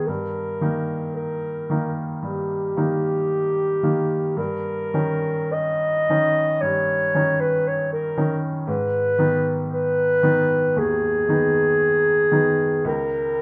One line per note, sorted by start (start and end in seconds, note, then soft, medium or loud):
0.00 0.10 D#3 soft
0.00 0.11 B3 soft
0.07 0.61 G2 soft
0.07 1.15 A#4 medium
0.61 1.65 D#3 soft
0.61 1.66 A#3 soft
0.61 1.66 D#4 soft
1.16 1.94 A#4 medium
1.70 2.19 D#3 soft
1.70 2.20 A#3 soft
1.70 2.20 D#4 soft
2.22 2.75 G2 soft
2.22 4.33 G4 medium
2.77 3.80 D#3 soft
2.77 3.80 A#3 soft
2.77 3.80 D#4 soft
3.83 4.33 D#3 soft
3.83 4.33 A#3 soft
3.83 4.33 D#4 soft
4.36 4.93 G2 soft
4.36 5.54 A#4 medium
4.94 6.05 D#3 soft
4.94 6.05 C#4 soft
4.94 6.05 D#4 soft
5.52 6.63 D#5 medium
6.10 6.59 D#3 soft
6.10 6.59 C#4 soft
6.10 6.59 D#4 soft
6.61 7.13 G2 soft
6.61 7.42 C#5 medium
7.15 8.13 D#3 soft
7.15 8.13 C#4 soft
7.15 8.14 D#4 soft
7.40 7.69 B4 medium
7.68 7.92 C#5 medium
7.93 8.42 A#4 medium
8.17 8.64 D#3 soft
8.17 8.64 C#4 soft
8.17 8.64 D#4 soft
8.67 9.17 G#2 soft
8.67 9.68 B4 medium
9.18 10.19 D#3 soft
9.18 10.20 B3 soft
9.18 10.20 D#4 soft
9.73 10.80 B4 medium
10.23 10.72 D#3 soft
10.23 10.72 B3 soft
10.23 10.73 D#4 soft
10.76 11.27 D#2 soft
10.76 12.87 G#4 medium
11.28 12.29 D#3 soft
11.28 12.29 B3 soft
11.28 12.29 D#4 soft
12.31 12.81 D#3 soft
12.31 12.81 B3 soft
12.31 12.82 D#4 soft
12.85 13.41 C#2 soft
12.85 13.42 A#4 medium